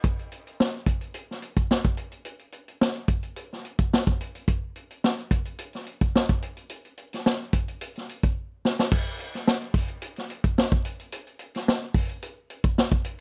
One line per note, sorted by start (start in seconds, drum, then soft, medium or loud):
0.04 kick medium
0.04 closed hi-hat medium
0.19 closed hi-hat soft
0.32 closed hi-hat medium
0.47 closed hi-hat soft
0.60 snare loud
0.74 closed hi-hat soft
0.86 kick medium
0.86 closed hi-hat medium
1.01 closed hi-hat soft
1.14 closed hi-hat medium
1.31 snare soft
1.42 closed hi-hat medium
1.57 kick medium
1.57 closed hi-hat soft
1.71 snare medium
1.84 kick medium
1.84 closed hi-hat soft
1.97 closed hi-hat medium
2.12 closed hi-hat soft
2.25 closed hi-hat medium
2.39 closed hi-hat soft
2.52 closed hi-hat medium
2.68 closed hi-hat soft
2.81 snare loud
2.95 closed hi-hat soft
3.08 kick medium
3.08 closed hi-hat medium
3.23 closed hi-hat soft
3.36 closed hi-hat medium
3.53 snare soft
3.65 closed hi-hat medium
3.79 kick medium
3.79 closed hi-hat soft
3.93 snare medium
4.07 kick medium
4.21 closed hi-hat medium
4.35 closed hi-hat soft
4.48 kick loud
4.48 closed hi-hat medium
4.76 closed hi-hat medium
4.90 closed hi-hat soft
5.04 snare loud
5.18 closed hi-hat soft
5.31 kick medium
5.31 closed hi-hat medium
5.45 closed hi-hat soft
5.59 closed hi-hat medium
5.73 snare soft
5.73 closed hi-hat soft
5.87 closed hi-hat medium
6.01 kick medium
6.01 closed hi-hat soft
6.15 snare loud
6.29 kick medium
6.29 closed hi-hat soft
6.42 closed hi-hat medium
6.57 closed hi-hat soft
6.70 closed hi-hat medium
6.85 closed hi-hat soft
6.97 closed hi-hat medium
7.13 snare soft
7.13 closed hi-hat soft
7.26 snare loud
7.53 kick medium
7.53 closed hi-hat medium
7.68 closed hi-hat soft
7.81 closed hi-hat medium
7.96 snare soft
7.96 closed hi-hat soft
8.09 closed hi-hat medium
8.23 kick medium
8.23 closed hi-hat soft
8.65 snare medium
8.79 snare medium
8.92 kick loud
8.92 crash loud
9.06 closed hi-hat soft
9.19 closed hi-hat medium
9.34 snare soft
9.34 closed hi-hat medium
9.47 snare loud
9.61 closed hi-hat soft
9.74 kick medium
9.74 open hi-hat medium
9.88 closed hi-hat medium
10.02 closed hi-hat loud
10.16 snare soft
10.16 closed hi-hat soft
10.30 closed hi-hat medium
10.44 kick medium
10.44 closed hi-hat soft
10.58 snare loud
10.72 kick loud
10.72 closed hi-hat soft
10.85 closed hi-hat medium
11.00 closed hi-hat medium
11.12 closed hi-hat medium
11.27 closed hi-hat soft
11.39 closed hi-hat medium
11.55 snare soft
11.55 closed hi-hat medium
11.68 snare loud
11.82 closed hi-hat soft
11.94 kick medium
11.94 open hi-hat medium
12.09 closed hi-hat medium
12.23 closed hi-hat loud
12.50 closed hi-hat medium
12.64 kick medium
12.64 closed hi-hat medium
12.78 snare medium
12.92 kick loud
12.92 closed hi-hat soft
13.04 closed hi-hat medium